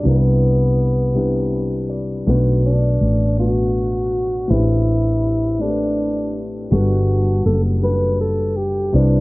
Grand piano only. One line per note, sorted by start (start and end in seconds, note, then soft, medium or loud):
0.03 1.01 C3 medium
0.03 1.02 G3 medium
0.03 1.02 D4 medium
0.03 1.02 E4 medium
0.03 1.03 B4 medium
1.14 2.12 C3 medium
1.14 2.13 G3 medium
1.14 2.13 D4 medium
1.14 2.14 E4 medium
1.14 2.14 B4 medium
1.53 1.87 B5 medium
1.90 2.24 D5 medium
2.26 3.24 B2 medium
2.26 3.24 A3 medium
2.26 3.25 D4 medium
2.26 3.25 F#4 medium
2.26 3.25 B4 loud
3.37 4.35 B2 medium
3.37 4.35 A3 medium
3.37 4.36 D4 medium
3.37 4.36 F#4 medium
3.37 4.36 B4 medium
4.47 5.46 A2 medium
4.47 5.46 A3 medium
4.47 5.46 C4 medium
4.47 5.47 D4 medium
4.47 5.47 G4 medium
4.47 5.47 B4 medium
5.59 6.57 A2 medium
5.59 6.57 A3 medium
5.59 6.58 C4 medium
5.59 6.58 D4 medium
5.59 6.58 G4 medium
5.59 5.67 A4 medium
5.69 6.62 B4 medium
6.70 7.68 G3 medium
6.70 7.69 D4 medium
6.70 7.69 F#4 medium
6.70 7.69 A4 medium
6.70 7.70 B4 medium
7.81 8.79 G3 medium
7.81 8.80 D4 medium
7.81 8.80 F#4 medium
7.81 8.81 A4 medium
7.81 8.81 B4 medium
8.92 9.20 C3 medium
8.92 9.20 C4 medium
8.92 9.20 D4 medium
8.92 9.20 E4 medium
8.92 9.20 B4 medium